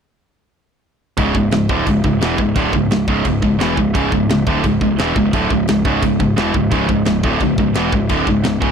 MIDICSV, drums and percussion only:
0, 0, Header, 1, 2, 480
1, 0, Start_track
1, 0, Tempo, 346021
1, 1636, Time_signature, 4, 2, 24, 8
1, 12089, End_track
2, 0, Start_track
2, 0, Title_t, "Drums"
2, 1630, Note_on_c, 9, 36, 100
2, 1630, Note_on_c, 9, 49, 61
2, 1769, Note_off_c, 9, 36, 0
2, 1769, Note_off_c, 9, 49, 0
2, 1868, Note_on_c, 9, 36, 99
2, 2007, Note_off_c, 9, 36, 0
2, 2098, Note_on_c, 9, 49, 67
2, 2115, Note_on_c, 9, 38, 116
2, 2237, Note_off_c, 9, 49, 0
2, 2254, Note_off_c, 9, 38, 0
2, 2348, Note_on_c, 9, 36, 113
2, 2487, Note_off_c, 9, 36, 0
2, 2589, Note_on_c, 9, 36, 86
2, 2589, Note_on_c, 9, 49, 63
2, 2728, Note_off_c, 9, 36, 0
2, 2728, Note_off_c, 9, 49, 0
2, 2828, Note_on_c, 9, 36, 96
2, 2967, Note_off_c, 9, 36, 0
2, 3070, Note_on_c, 9, 49, 60
2, 3087, Note_on_c, 9, 38, 110
2, 3209, Note_off_c, 9, 49, 0
2, 3226, Note_off_c, 9, 38, 0
2, 3306, Note_on_c, 9, 36, 99
2, 3445, Note_off_c, 9, 36, 0
2, 3546, Note_on_c, 9, 49, 65
2, 3547, Note_on_c, 9, 36, 94
2, 3684, Note_off_c, 9, 49, 0
2, 3686, Note_off_c, 9, 36, 0
2, 3788, Note_on_c, 9, 36, 91
2, 3926, Note_off_c, 9, 36, 0
2, 4032, Note_on_c, 9, 49, 64
2, 4049, Note_on_c, 9, 38, 111
2, 4171, Note_off_c, 9, 49, 0
2, 4188, Note_off_c, 9, 38, 0
2, 4269, Note_on_c, 9, 36, 109
2, 4408, Note_off_c, 9, 36, 0
2, 4507, Note_on_c, 9, 36, 88
2, 4509, Note_on_c, 9, 49, 62
2, 4646, Note_off_c, 9, 36, 0
2, 4648, Note_off_c, 9, 49, 0
2, 4749, Note_on_c, 9, 36, 92
2, 4888, Note_off_c, 9, 36, 0
2, 4994, Note_on_c, 9, 49, 56
2, 5011, Note_on_c, 9, 38, 110
2, 5133, Note_off_c, 9, 49, 0
2, 5150, Note_off_c, 9, 38, 0
2, 5235, Note_on_c, 9, 36, 97
2, 5373, Note_off_c, 9, 36, 0
2, 5477, Note_on_c, 9, 36, 110
2, 5489, Note_on_c, 9, 49, 52
2, 5616, Note_off_c, 9, 36, 0
2, 5628, Note_off_c, 9, 49, 0
2, 5716, Note_on_c, 9, 36, 97
2, 5855, Note_off_c, 9, 36, 0
2, 5957, Note_on_c, 9, 49, 63
2, 5973, Note_on_c, 9, 38, 116
2, 6095, Note_off_c, 9, 49, 0
2, 6112, Note_off_c, 9, 38, 0
2, 6196, Note_on_c, 9, 36, 106
2, 6335, Note_off_c, 9, 36, 0
2, 6431, Note_on_c, 9, 49, 60
2, 6435, Note_on_c, 9, 36, 91
2, 6570, Note_off_c, 9, 49, 0
2, 6574, Note_off_c, 9, 36, 0
2, 6674, Note_on_c, 9, 36, 92
2, 6812, Note_off_c, 9, 36, 0
2, 6914, Note_on_c, 9, 49, 64
2, 6930, Note_on_c, 9, 38, 110
2, 7052, Note_off_c, 9, 49, 0
2, 7069, Note_off_c, 9, 38, 0
2, 7156, Note_on_c, 9, 36, 96
2, 7295, Note_off_c, 9, 36, 0
2, 7395, Note_on_c, 9, 49, 63
2, 7397, Note_on_c, 9, 36, 110
2, 7533, Note_off_c, 9, 49, 0
2, 7536, Note_off_c, 9, 36, 0
2, 7636, Note_on_c, 9, 36, 94
2, 7774, Note_off_c, 9, 36, 0
2, 7873, Note_on_c, 9, 49, 66
2, 7890, Note_on_c, 9, 38, 115
2, 8012, Note_off_c, 9, 49, 0
2, 8029, Note_off_c, 9, 38, 0
2, 8115, Note_on_c, 9, 36, 106
2, 8254, Note_off_c, 9, 36, 0
2, 8358, Note_on_c, 9, 36, 99
2, 8361, Note_on_c, 9, 49, 60
2, 8496, Note_off_c, 9, 36, 0
2, 8499, Note_off_c, 9, 49, 0
2, 8600, Note_on_c, 9, 36, 95
2, 8739, Note_off_c, 9, 36, 0
2, 8833, Note_on_c, 9, 49, 56
2, 8849, Note_on_c, 9, 38, 114
2, 8971, Note_off_c, 9, 49, 0
2, 8988, Note_off_c, 9, 38, 0
2, 9076, Note_on_c, 9, 36, 88
2, 9214, Note_off_c, 9, 36, 0
2, 9316, Note_on_c, 9, 36, 97
2, 9316, Note_on_c, 9, 49, 54
2, 9454, Note_off_c, 9, 49, 0
2, 9455, Note_off_c, 9, 36, 0
2, 9555, Note_on_c, 9, 36, 99
2, 9693, Note_off_c, 9, 36, 0
2, 9783, Note_on_c, 9, 49, 62
2, 9799, Note_on_c, 9, 38, 108
2, 9921, Note_off_c, 9, 49, 0
2, 9938, Note_off_c, 9, 38, 0
2, 10037, Note_on_c, 9, 36, 100
2, 10175, Note_off_c, 9, 36, 0
2, 10266, Note_on_c, 9, 49, 59
2, 10274, Note_on_c, 9, 36, 86
2, 10405, Note_off_c, 9, 49, 0
2, 10413, Note_off_c, 9, 36, 0
2, 10514, Note_on_c, 9, 36, 98
2, 10653, Note_off_c, 9, 36, 0
2, 10741, Note_on_c, 9, 49, 61
2, 10758, Note_on_c, 9, 38, 110
2, 10880, Note_off_c, 9, 49, 0
2, 10897, Note_off_c, 9, 38, 0
2, 10992, Note_on_c, 9, 36, 100
2, 11131, Note_off_c, 9, 36, 0
2, 11224, Note_on_c, 9, 49, 67
2, 11232, Note_on_c, 9, 36, 98
2, 11363, Note_off_c, 9, 49, 0
2, 11371, Note_off_c, 9, 36, 0
2, 11472, Note_on_c, 9, 36, 92
2, 11611, Note_off_c, 9, 36, 0
2, 11703, Note_on_c, 9, 49, 67
2, 11720, Note_on_c, 9, 38, 117
2, 11842, Note_off_c, 9, 49, 0
2, 11859, Note_off_c, 9, 38, 0
2, 11955, Note_on_c, 9, 36, 109
2, 12089, Note_off_c, 9, 36, 0
2, 12089, End_track
0, 0, End_of_file